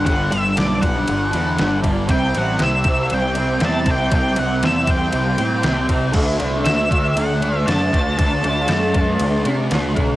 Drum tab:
CC |--------|--------|--------|x-------|
RD |xxxxxxxx|xxxxxxxx|xxxxxxxx|-xxxxxxx|
SD |--o---o-|--o---oo|--o---oo|--o---o-|
BD |o--o---o|o--o---o|o--o---o|o--o---o|

CC |--------|
RD |xxxxxxxx|
SD |--o---oo|
BD |o--o---o|